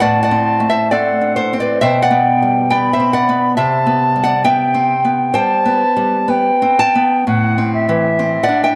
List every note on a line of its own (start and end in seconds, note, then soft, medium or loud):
0.00 1.77 A2 medium
0.00 0.23 D5 medium
0.00 0.21 F#5 medium
0.00 0.92 A5 medium
0.23 0.66 D5 medium
0.23 0.67 F#5 medium
0.31 0.80 C4 medium
0.60 1.09 A3 soft
0.70 0.91 C5 medium
0.70 0.91 E5 medium
0.91 1.40 C4 medium
0.91 1.34 A4 medium
0.91 1.35 D5 medium
0.91 1.55 F#5 medium
1.21 1.52 D4 soft
1.36 1.58 A4 medium
1.36 1.59 C5 medium
1.53 1.83 C4 medium
1.60 1.82 B4 medium
1.60 1.81 D5 medium
1.81 3.53 B2 medium
1.81 2.03 C5 medium
1.81 2.02 E5 medium
1.81 2.72 G5 medium
2.02 2.67 D5 medium
2.02 2.67 F#5 medium
2.11 2.59 B3 medium
2.42 2.89 G3 medium
2.70 3.17 B3 soft
2.70 2.92 D5 medium
2.70 2.92 G5 medium
2.70 3.55 B5 medium
2.93 3.14 C5 medium
2.93 3.13 E5 medium
3.00 3.29 C4 soft
3.13 3.54 D5 medium
3.13 3.55 F#5 medium
3.29 3.58 B3 medium
3.55 5.31 C3 medium
3.55 4.20 C5 medium
3.55 4.20 E5 medium
3.55 4.46 A5 medium
3.86 4.33 B3 medium
4.16 4.63 G3 soft
4.23 4.45 D5 medium
4.23 4.44 F#5 medium
4.44 4.93 B3 medium
4.44 5.31 E5 medium
4.44 5.36 G5 medium
4.44 5.31 G5 medium
4.74 5.05 C4 medium
5.05 5.53 B3 medium
5.34 5.83 G3 medium
5.34 6.74 C5 medium
5.34 6.75 G5 medium
5.34 6.31 A5 medium
5.65 6.16 B3 medium
5.96 6.50 G3 medium
6.28 6.82 B3 medium
6.28 7.27 G5 medium
6.62 6.95 C4 medium
6.79 8.38 F#5 medium
6.79 8.37 A5 medium
6.95 7.26 B3 medium
7.27 8.75 A2 medium
7.27 7.72 F#5 medium
7.58 8.07 C4 medium
7.74 8.75 E5 medium
7.89 8.37 E3 medium
8.19 8.48 C4 medium
8.43 8.64 D5 medium
8.43 8.63 F#5 medium
8.49 8.75 D4 soft
8.64 8.75 E5 medium
8.64 8.75 G5 medium